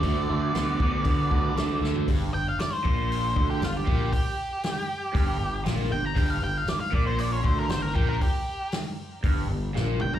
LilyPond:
<<
  \new Staff \with { instrumentName = "Lead electric guitar" } { \time 4/4 \key g \minor \tempo 4 = 117 d''2.~ d''8 r8 | r8 g''16 f''16 d''16 c''4. g'16 f'16 g'8. | g'2. r8 g''16 bes''16 | g''16 f''16 g''16 f''16 d''16 f''16 d''16 c''16 d''16 cis''16 c''16 bes'16 c''16 bes'16 g'16 bes'16 |
g'4 r2 r8 g''16 bes''16 | }
  \new Staff \with { instrumentName = "Lead electric guitar" } { \time 4/4 \key g \minor fis'2.~ fis'8 r8 | r1 | r1 | r1 |
r1 | }
  \new Staff \with { instrumentName = "Overdriven electric guitar" } { \clef bass \time 4/4 \key g \minor <d a>8 <d a>8 <d b>8 <d b>8 <d b>8 <d b>8 <d a>8 <d a>8 | g,8 g,8 r8 bes,4 d8 g,8 bes,8 | r2 g,8 g,8 bes,8 g,8 | g,8 g,8 r8 bes,4 d8 g,8 bes,8 |
r2 g,8 g,8 bes,8 g,8 | }
  \new Staff \with { instrumentName = "Fingered electric bass" } { \clef bass \time 4/4 \key g \minor d,8 d,8 d,8 d,8 d8 d,8 d,8 d,8 | g,,8 g,,8 r8 bes,,4 d,8 g,,8 bes,,8 | r2 g,,8 g,,8 bes,,8 g,,8 | g,,8 g,,8 r8 bes,,4 d,8 g,,8 bes,,8 |
r2 g,,8 g,,8 bes,,8 g,,8 | }
  \new DrumStaff \with { instrumentName = "Drums" } \drummode { \time 4/4 <hho bd>4 <hho sn>8 bd8 <hho bd>8 bd8 <hho sn>8 sn16 tomfh16 | <hho bd>4 <hho sn>8 bd8 hho8 bd8 <hho sn>8 bd8 | <hho bd>4 <hho sn>4 <hho bd>4 <hho sn>4 | <hho bd>4 <hho sn>8 bd8 hho8 bd8 <hho sn>8 bd8 |
<hho bd>4 <hho sn>4 <hho bd>4 sn8 toml16 tomfh16 | }
>>